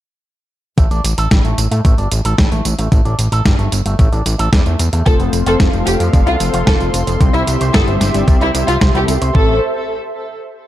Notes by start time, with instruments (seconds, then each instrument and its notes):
0.78 analog synth bass A1, clean electric guitar A3, kick, closed hi-hat, tambourine
0.91 analog synth bass A1, clean electric guitar D4, closed hi-hat, tambourine
1.04 analog synth bass A1, closed hi-hat, tambourine
1.18 analog synth bass A1, clean electric guitar A4, closed hi-hat, tambourine
1.31 analog synth bass A1, clean electric guitar G3, kick, snare, closed hi-hat, tambourine
1.45 analog synth bass A1, clean electric guitar A3, closed hi-hat, tambourine
1.58 analog synth bass A1, closed hi-hat, tambourine
1.71 analog synth bass A2, clean electric guitar A3, closed hi-hat, tambourine
1.85 analog synth bass A1, clean electric guitar A3, kick, closed hi-hat, tambourine
1.98 analog synth bass G1, clean electric guitar D4, closed hi-hat, tambourine
2.12 analog synth bass A1, closed hi-hat, tambourine
2.25 analog synth bass A1, clean electric guitar A4, closed hi-hat, tambourine
2.38 analog synth bass A1, clean electric guitar G3, kick, snare, closed hi-hat, tambourine
2.52 analog synth bass A1, clean electric guitar A3, closed hi-hat, tambourine
2.65 analog synth bass A1, closed hi-hat, tambourine
2.79 analog synth bass A1, clean electric guitar A3, closed hi-hat, tambourine
2.92 analog synth bass A1, clean electric guitar A3, kick, closed hi-hat, tambourine
3.05 analog synth bass A1, clean electric guitar D4, closed hi-hat, tambourine
3.19 analog synth bass A1, closed hi-hat, tambourine
3.32 analog synth bass A1, clean electric guitar A4, closed hi-hat, tambourine
3.45 analog synth bass G1, clean electric guitar G3, kick, snare, closed hi-hat, tambourine
3.59 analog synth bass G1, clean electric guitar A3, closed hi-hat, tambourine
3.72 analog synth bass G1, closed hi-hat, tambourine
3.86 analog synth bass G1, clean electric guitar A3, closed hi-hat, tambourine
3.99 analog synth bass A1, clean electric guitar A3, kick, closed hi-hat, tambourine
4.13 analog synth bass A1, clean electric guitar D4, closed hi-hat, tambourine
4.26 analog synth bass A1, closed hi-hat, tambourine
4.39 analog synth bass A1, clean electric guitar A4, closed hi-hat, tambourine
4.53 analog synth bass E2, clean electric guitar G3, kick, snare, closed hi-hat, tambourine
4.66 analog synth bass E2, clean electric guitar A3, closed hi-hat, tambourine
4.79 analog synth bass E2, closed hi-hat, tambourine
4.93 analog synth bass E2, clean electric guitar A3, closed hi-hat, tambourine
5.06 analog synth bass F1, clean electric guitar F3, analog polysynth A3 C4 F4 C5, violin section A4, analog synth pad A4 F5 C6, kick, closed hi-hat, tambourine
5.20 analog synth bass F1, clean electric guitar B3, closed hi-hat, tambourine
5.33 analog synth bass F1, closed hi-hat, tambourine
5.46 analog synth bass F1, analog polysynth A3 C4 F4 C5, clean electric guitar F4, violin section A4, closed hi-hat, tambourine
5.60 analog synth bass F1, clean electric guitar E3, kick, snare, closed hi-hat, tambourine
5.73 analog synth bass F1, clean electric guitar F3, closed hi-hat, tambourine
5.86 analog synth bass F1, violin section G4, closed hi-hat, tambourine
6.00 analog synth bass F2, clean electric guitar F3, analog polysynth A3 C4 F4 D5, closed hi-hat, tambourine
6.13 analog synth bass F1, clean electric guitar F3, kick, closed hi-hat, tambourine
6.27 analog synth bass C2, clean electric guitar B3, violin section F4, closed hi-hat, tambourine
6.40 analog synth bass F1, analog polysynth A3 C4 F4 C5, closed hi-hat, tambourine
6.54 analog synth bass F1, clean electric guitar F4, closed hi-hat, tambourine
6.67 analog synth bass F1, clean electric guitar E3, violin section A4, kick, snare, closed hi-hat, tambourine
6.80 analog synth bass F1, clean electric guitar F3, analog polysynth A3 C4 F4 C5, closed hi-hat, tambourine
6.94 analog synth bass F1, closed hi-hat, tambourine
7.07 analog synth bass F1, clean electric guitar F3, closed hi-hat, tambourine
7.20 analog synth bass C2, analog polysynth C3 G3 C4 E4 C5, clean electric guitar C4, analog synth pad G4 E5, kick, closed hi-hat, tambourine
7.34 analog synth bass C2, violin section E4, clean electric guitar E4, closed hi-hat, tambourine
7.47 analog synth bass C2, closed hi-hat, tambourine
7.61 analog synth bass C2, analog polysynth C3 G3 C4 E4 C5, clean electric guitar C5, closed hi-hat, tambourine
7.74 analog synth bass G1, clean electric guitar B3, violin section A4, kick, snare, closed hi-hat, tambourine
7.87 analog synth bass G1, clean electric guitar C4, closed hi-hat, tambourine
8.01 analog synth bass G1, snare, closed hi-hat, tambourine
8.14 analog synth bass G1, analog polysynth C3 G3 C4 E4 D5, clean electric guitar C4, closed hi-hat, tambourine
8.28 analog synth bass C2, clean electric guitar C4, kick, closed hi-hat, tambourine
8.41 analog synth bass C2, violin section E4, clean electric guitar E4, closed hi-hat, tambourine
8.54 analog synth bass C2, analog polysynth C3 G3 C4 E4 C5, closed hi-hat, tambourine
8.68 analog synth bass C2, clean electric guitar C4, violin section F4, closed hi-hat, tambourine
8.81 analog synth bass C2, clean electric guitar C5, kick, snare, closed hi-hat, tambourine
8.95 analog synth bass C2, analog polysynth C3 G3 C4 E4 A4, clean electric guitar E4, violin section G4, closed hi-hat, tambourine
9.08 analog synth bass C2, closed hi-hat, tambourine
9.21 analog synth bass C2, clean electric guitar C5, closed hi-hat, tambourine
9.35 analog synth bass A1, analog polysynth A3 C4 E4 C5, clean electric guitar A3, violin section A4, analog synth pad A4 C5 E5, kick